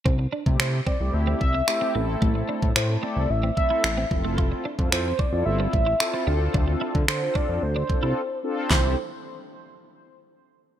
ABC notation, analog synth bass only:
X:1
M:4/4
L:1/16
Q:1/4=111
K:C
V:1 name="Analog synth bass" clef=bass
C,,2 z C, C,2 z C,, D,,2 C,,2 z2 A,,,2 | A,,,2 z A,, A,,2 z C,, A,,,2 z2 A,,,2 F,,,2- | F,,,2 z F,, F,,2 z F,, G,,,2 A,,,2 z2 D,,2 | D,,2 z D, D,2 z F,, D,,2 C,, C,, z4 |
C,,2 z12 z2 |]